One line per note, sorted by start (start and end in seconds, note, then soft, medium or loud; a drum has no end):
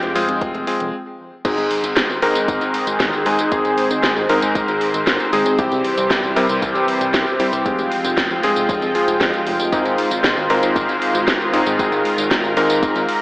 0.00 0.14 F1 medium
0.00 0.92 F3 medium
0.00 0.12 G#3 medium
0.00 0.92 G#3 medium
0.00 0.12 C4 medium
0.00 0.90 C4 medium
0.00 0.12 F4 medium
0.00 0.12 G4 medium
0.00 0.92 G5 medium
0.00 closed hi-hat soft
0.15 0.27 F1 medium
0.15 0.65 G#3 loud
0.15 0.65 C4 medium
0.15 0.65 F4 medium
0.15 0.65 G#4 loud
0.15 open hi-hat loud
0.29 0.40 F1 medium
0.29 closed hi-hat medium
0.41 0.53 F1 loud
0.41 kick loud
0.41 closed hi-hat medium
0.55 0.66 F1 medium
0.55 closed hi-hat soft
0.67 0.93 G#3 medium
0.67 0.93 C4 medium
0.67 0.93 F4 medium
0.67 0.93 G#4 medium
0.67 open hi-hat loud
0.80 0.92 F1 medium
0.80 closed hi-hat medium
1.45 1.56 G#1 loud
1.45 2.19 G#2 medium
1.45 5.55 D#3 medium
1.45 2.19 G#3 medium
1.45 5.55 G#3 medium
1.45 2.19 C4 medium
1.45 13.22 C4 medium
1.45 2.19 D#4 medium
1.45 2.19 G#4 medium
1.45 5.55 G#4 medium
1.45 7.62 C5 medium
1.45 kick loud
1.45 closed hi-hat medium
1.45 tambourine medium
1.45 crash loud
1.58 1.69 G#1 medium
1.58 closed hi-hat soft
1.58 tambourine soft
1.71 open hi-hat loud
1.84 1.95 G#1 medium
1.84 closed hi-hat medium
1.84 tambourine medium
1.97 2.08 G#1 loud
1.97 kick loud
1.97 snare loud
1.97 closed hi-hat medium
1.97 tambourine medium
2.10 2.21 G#1 medium
2.10 tambourine soft
2.22 2.34 G#1 medium
2.22 3.23 G#2 loud
2.22 3.23 G#3 medium
2.22 3.23 C4 medium
2.22 3.23 D#4 medium
2.22 3.23 A#4 loud
2.22 open hi-hat loud
2.35 2.47 G#1 medium
2.35 closed hi-hat medium
2.35 tambourine medium
2.48 2.60 G#1 loud
2.48 kick loud
2.48 closed hi-hat medium
2.48 tambourine soft
2.61 2.73 G#1 medium
2.61 closed hi-hat soft
2.61 tambourine soft
2.74 open hi-hat loud
2.87 2.98 G#1 medium
2.87 closed hi-hat medium
2.87 tambourine medium
3.00 3.11 G#1 loud
3.00 kick loud
3.00 snare loud
3.00 closed hi-hat medium
3.00 tambourine medium
3.13 tambourine soft
3.26 3.37 G#1 medium
3.26 3.49 G#2 medium
3.26 3.49 G#3 medium
3.26 3.49 C4 medium
3.26 3.49 D#4 medium
3.26 3.49 G#4 loud
3.26 open hi-hat loud
3.39 3.50 G#1 medium
3.39 closed hi-hat medium
3.39 tambourine medium
3.52 3.63 G#1 loud
3.52 4.26 G#2 medium
3.52 4.26 G#3 medium
3.52 4.26 C4 medium
3.52 4.26 D#4 medium
3.52 4.26 G#4 medium
3.52 kick loud
3.52 closed hi-hat medium
3.52 tambourine soft
3.65 3.76 G#1 medium
3.65 closed hi-hat soft
3.65 tambourine soft
3.78 open hi-hat loud
3.91 4.02 G#1 medium
3.91 closed hi-hat medium
3.91 tambourine medium
4.03 4.15 G#1 loud
4.03 kick loud
4.03 snare loud
4.03 closed hi-hat medium
4.03 tambourine soft
4.16 4.28 G#1 medium
4.16 tambourine soft
4.29 4.41 G#1 loud
4.29 5.30 G#2 loud
4.29 5.30 G#3 medium
4.29 5.30 C4 medium
4.29 5.30 D#4 medium
4.29 5.30 A#4 loud
4.29 open hi-hat loud
4.42 4.54 G#1 medium
4.42 closed hi-hat medium
4.42 tambourine medium
4.55 4.67 G#1 loud
4.55 kick loud
4.55 closed hi-hat medium
4.55 tambourine soft
4.68 4.80 G#1 medium
4.68 closed hi-hat soft
4.68 tambourine soft
4.81 open hi-hat loud
4.94 5.05 G#1 medium
4.94 closed hi-hat medium
4.94 tambourine medium
5.07 5.18 G#1 loud
5.07 kick loud
5.07 snare loud
5.07 closed hi-hat medium
5.07 tambourine soft
5.20 closed hi-hat soft
5.20 tambourine soft
5.33 5.44 G#1 medium
5.33 5.56 G#3 medium
5.33 5.56 C4 medium
5.33 5.56 D#4 medium
5.33 5.56 G#4 loud
5.33 open hi-hat loud
5.46 5.57 G#1 medium
5.46 closed hi-hat medium
5.46 tambourine medium
5.59 5.70 C2 loud
5.59 6.33 C3 medium
5.59 7.63 E3 medium
5.59 7.63 G3 medium
5.59 6.33 G3 medium
5.59 6.33 C4 medium
5.59 6.33 E4 medium
5.59 7.63 G4 medium
5.59 6.33 G4 medium
5.59 kick loud
5.59 closed hi-hat medium
5.59 tambourine soft
5.72 5.83 C2 medium
5.72 closed hi-hat soft
5.72 tambourine soft
5.84 open hi-hat medium
5.98 6.09 C2 medium
5.98 closed hi-hat medium
5.98 tambourine medium
6.10 6.22 C2 loud
6.10 kick loud
6.10 snare loud
6.10 closed hi-hat medium
6.10 tambourine soft
6.23 6.35 C2 medium
6.23 tambourine soft
6.36 6.48 C2 loud
6.36 7.37 C3 loud
6.36 7.37 G3 medium
6.36 7.37 C4 medium
6.36 7.37 E4 medium
6.36 7.37 A#4 loud
6.36 open hi-hat loud
6.49 6.61 C2 medium
6.49 closed hi-hat medium
6.49 tambourine medium
6.62 6.73 C2 loud
6.62 kick loud
6.62 closed hi-hat medium
6.62 tambourine soft
6.75 6.86 C2 medium
6.75 closed hi-hat soft
6.75 tambourine soft
6.88 open hi-hat loud
7.01 7.12 C2 medium
7.01 closed hi-hat medium
7.01 tambourine medium
7.14 7.25 C2 loud
7.14 kick loud
7.14 snare loud
7.14 closed hi-hat medium
7.14 tambourine soft
7.27 tambourine soft
7.40 7.51 C2 medium
7.40 7.62 G3 medium
7.40 7.62 C4 medium
7.40 7.62 E4 medium
7.40 7.62 G4 loud
7.40 open hi-hat loud
7.53 7.64 C2 medium
7.53 closed hi-hat medium
7.53 tambourine medium
7.66 7.77 F1 loud
7.66 9.70 F3 medium
7.66 8.40 G#3 medium
7.66 13.22 G#3 medium
7.66 8.40 C4 medium
7.66 13.22 F4 medium
7.66 8.40 F4 medium
7.66 8.40 G4 medium
7.66 9.70 G5 medium
7.66 kick loud
7.66 closed hi-hat medium
7.66 tambourine soft
7.79 7.90 F1 medium
7.79 closed hi-hat soft
7.79 tambourine soft
7.92 open hi-hat loud
8.05 8.16 F1 medium
8.05 closed hi-hat medium
8.05 tambourine medium
8.17 8.29 F1 loud
8.17 kick loud
8.17 snare loud
8.17 closed hi-hat medium
8.17 tambourine soft
8.30 8.42 F1 medium
8.30 tambourine soft
8.43 8.55 F1 medium
8.43 8.92 G#3 loud
8.43 8.92 C4 medium
8.43 8.92 F4 medium
8.43 8.92 G#4 loud
8.43 open hi-hat loud
8.56 8.67 F1 medium
8.56 closed hi-hat medium
8.56 tambourine medium
8.69 8.80 F1 loud
8.69 kick loud
8.69 closed hi-hat medium
8.69 tambourine soft
8.82 8.93 F1 medium
8.82 closed hi-hat soft
8.82 tambourine soft
8.95 9.69 G#3 medium
8.95 9.69 C4 medium
8.95 9.69 F4 medium
8.95 9.69 G#4 medium
8.95 open hi-hat loud
9.08 9.19 F1 medium
9.08 closed hi-hat medium
9.08 tambourine medium
9.21 9.32 F2 loud
9.21 kick loud
9.21 snare loud
9.21 closed hi-hat medium
9.21 tambourine soft
9.34 closed hi-hat soft
9.34 tambourine soft
9.47 9.58 F1 medium
9.47 open hi-hat loud
9.60 9.71 F1 medium
9.60 closed hi-hat medium
9.60 tambourine medium
9.72 9.84 G#1 loud
9.72 10.47 G#2 medium
9.72 13.22 D#3 medium
9.72 10.47 G#3 medium
9.72 10.47 C4 medium
9.72 10.47 D#4 medium
9.72 10.47 G#4 medium
9.72 11.78 C5 medium
9.72 kick loud
9.72 closed hi-hat medium
9.72 tambourine soft
9.85 9.97 G#1 medium
9.85 closed hi-hat soft
9.85 tambourine soft
9.98 open hi-hat loud
10.11 10.23 G#1 medium
10.11 closed hi-hat soft
10.11 tambourine medium
10.24 10.36 G#1 loud
10.24 kick loud
10.24 snare loud
10.24 closed hi-hat medium
10.24 tambourine medium
10.37 10.48 G#1 medium
10.37 tambourine soft
10.50 10.61 G#1 medium
10.50 11.50 G#2 loud
10.50 11.50 G#3 medium
10.50 11.50 C4 medium
10.50 11.50 D#4 medium
10.50 11.50 A#4 loud
10.50 open hi-hat loud
10.63 10.74 G#1 medium
10.63 closed hi-hat medium
10.63 tambourine medium
10.76 10.87 G#1 loud
10.76 kick loud
10.76 closed hi-hat medium
10.76 tambourine medium
10.89 11.00 G#1 medium
10.89 closed hi-hat soft
10.89 tambourine soft
11.02 open hi-hat loud
11.15 11.26 G#1 medium
11.15 closed hi-hat soft
11.15 tambourine medium
11.28 11.39 G#1 loud
11.28 kick loud
11.28 snare loud
11.28 closed hi-hat medium
11.28 tambourine medium
11.41 tambourine soft
11.53 11.65 G#1 medium
11.53 11.76 G#2 loud
11.53 11.76 G#3 medium
11.53 11.76 C4 medium
11.53 11.76 D#4 medium
11.53 11.76 G#4 loud
11.53 open hi-hat loud
11.66 11.78 G#1 medium
11.66 closed hi-hat soft
11.66 tambourine medium
11.79 11.91 G#1 medium
11.79 12.54 G#2 medium
11.79 12.54 G#3 medium
11.79 12.54 C4 medium
11.79 12.54 D#4 medium
11.79 12.54 G#4 medium
11.79 13.22 A#4 medium
11.79 kick loud
11.79 closed hi-hat medium
11.79 tambourine medium
11.92 12.04 G#1 medium
11.92 closed hi-hat soft
11.92 tambourine soft
12.05 open hi-hat loud
12.18 12.29 G#1 medium
12.18 closed hi-hat medium
12.18 tambourine medium
12.31 12.42 G#1 loud
12.31 kick loud
12.31 snare loud
12.31 closed hi-hat medium
12.31 tambourine medium
12.44 12.55 G#1 medium
12.44 tambourine soft
12.57 12.68 G#1 loud
12.57 13.22 G#2 loud
12.57 13.22 G#3 medium
12.57 13.22 C4 medium
12.57 13.22 D#4 medium
12.57 13.22 A#4 loud
12.57 open hi-hat loud
12.70 12.81 G#1 medium
12.70 closed hi-hat medium
12.70 tambourine medium
12.83 12.94 G#1 loud
12.83 kick loud
12.83 closed hi-hat medium
12.83 tambourine medium
12.95 13.07 G#1 medium
12.95 closed hi-hat soft
12.95 tambourine soft
13.09 open hi-hat loud